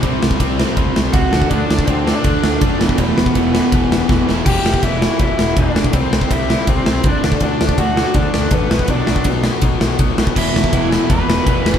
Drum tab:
CC |----------------|----------------|----------------|x---------------|
RD |x---x---x---x---|x---x---x---x---|x---x---x-------|----x---x---x---|
SD |--o---o---o---o-|--o---o---o---o-|--o---o---o-o-o-|--o---o---o---o-|
BD |o--oo---o---o--o|o--oo---o---o--o|o--oo---o---o---|o--oo---o---o--o|

CC |----------------|----------------|----------------|x---------------|
RD |x---x---x---x---|x---x---x---x---|x---x---x---x---|----x---x---x---|
SD |--o---o---o---o-|--o---o---o---o-|--o---o---o---o-|--o---o---o---o-|
BD |o--oo---o---o--o|o--oo---o---o--o|o--oo---o---o--o|o--oo---o---o--o|